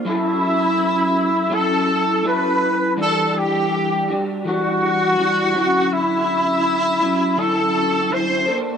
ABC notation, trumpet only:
X:1
M:4/4
L:1/8
Q:"Swing 16ths" 1/4=82
K:D
V:1 name="Trumpet"
E4 A2 B2 | A G2 z F4 | E4 A2 =c z |]